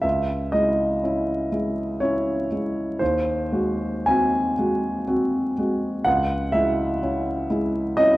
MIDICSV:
0, 0, Header, 1, 2, 480
1, 0, Start_track
1, 0, Key_signature, 4, "minor"
1, 0, Tempo, 990099
1, 17, Time_signature, 3, 2, 24, 8
1, 1456, Tempo, 1060071
1, 1936, Tempo, 1006711
1, 2416, Tempo, 967742
1, 3954, End_track
2, 0, Start_track
2, 0, Title_t, "Grand piano"
2, 0, Program_c, 0, 0
2, 0, Control_c, 0, 64, 127
2, 8, Note_on_c, 0, 76, 66
2, 15, Note_on_c, 0, 37, 46
2, 26, Control_c, 0, 64, 0
2, 98, Control_c, 0, 64, 127
2, 253, Note_on_c, 0, 75, 69
2, 256, Note_off_c, 0, 76, 0
2, 260, Note_on_c, 0, 56, 36
2, 262, Note_on_c, 0, 64, 39
2, 481, Note_off_c, 0, 56, 0
2, 482, Note_off_c, 0, 64, 0
2, 499, Note_on_c, 0, 61, 38
2, 502, Note_on_c, 0, 64, 37
2, 720, Note_off_c, 0, 61, 0
2, 721, Note_off_c, 0, 64, 0
2, 736, Note_on_c, 0, 56, 33
2, 738, Note_on_c, 0, 64, 37
2, 959, Note_off_c, 0, 56, 0
2, 960, Note_off_c, 0, 64, 0
2, 971, Note_on_c, 0, 73, 68
2, 977, Note_off_c, 0, 75, 0
2, 978, Note_on_c, 0, 61, 39
2, 980, Note_on_c, 0, 64, 42
2, 1198, Note_off_c, 0, 61, 0
2, 1199, Note_off_c, 0, 64, 0
2, 1220, Note_on_c, 0, 56, 33
2, 1221, Note_on_c, 0, 64, 35
2, 1436, Note_off_c, 0, 37, 0
2, 1438, Note_off_c, 0, 56, 0
2, 1438, Note_off_c, 0, 64, 0
2, 1451, Note_on_c, 0, 72, 64
2, 1452, Note_off_c, 0, 73, 0
2, 1457, Note_on_c, 0, 39, 46
2, 1463, Control_c, 0, 64, 0
2, 1527, Control_c, 0, 64, 127
2, 1691, Note_on_c, 0, 56, 38
2, 1693, Note_on_c, 0, 66, 42
2, 1918, Note_off_c, 0, 56, 0
2, 1919, Note_off_c, 0, 66, 0
2, 1934, Note_off_c, 0, 72, 0
2, 1935, Note_on_c, 0, 80, 77
2, 1941, Note_on_c, 0, 60, 39
2, 1944, Note_on_c, 0, 66, 41
2, 2163, Note_off_c, 0, 60, 0
2, 2164, Note_off_c, 0, 66, 0
2, 2185, Note_on_c, 0, 56, 35
2, 2185, Note_on_c, 0, 66, 40
2, 2400, Note_off_c, 0, 66, 0
2, 2401, Note_off_c, 0, 56, 0
2, 2417, Note_on_c, 0, 60, 39
2, 2420, Note_on_c, 0, 66, 41
2, 2644, Note_off_c, 0, 60, 0
2, 2646, Note_off_c, 0, 66, 0
2, 2663, Note_off_c, 0, 80, 0
2, 2670, Note_on_c, 0, 56, 30
2, 2672, Note_on_c, 0, 66, 38
2, 2887, Note_off_c, 0, 39, 0
2, 2890, Note_off_c, 0, 56, 0
2, 2890, Note_off_c, 0, 66, 0
2, 2900, Note_on_c, 0, 78, 82
2, 2908, Note_on_c, 0, 37, 51
2, 2914, Control_c, 0, 64, 0
2, 2979, Control_c, 0, 64, 127
2, 3136, Note_on_c, 0, 76, 70
2, 3143, Note_off_c, 0, 78, 0
2, 3144, Note_on_c, 0, 56, 38
2, 3149, Note_on_c, 0, 64, 42
2, 3364, Note_off_c, 0, 56, 0
2, 3367, Note_off_c, 0, 64, 0
2, 3386, Note_on_c, 0, 61, 44
2, 3386, Note_on_c, 0, 64, 40
2, 3603, Note_off_c, 0, 61, 0
2, 3603, Note_off_c, 0, 64, 0
2, 3621, Note_on_c, 0, 56, 40
2, 3623, Note_on_c, 0, 64, 39
2, 3838, Note_off_c, 0, 56, 0
2, 3839, Note_off_c, 0, 64, 0
2, 3853, Note_off_c, 0, 76, 0
2, 3853, Note_on_c, 0, 75, 83
2, 3862, Note_on_c, 0, 61, 41
2, 3864, Note_on_c, 0, 64, 47
2, 3954, Note_off_c, 0, 37, 0
2, 3954, Note_off_c, 0, 61, 0
2, 3954, Note_off_c, 0, 64, 0
2, 3954, Note_off_c, 0, 75, 0
2, 3954, End_track
0, 0, End_of_file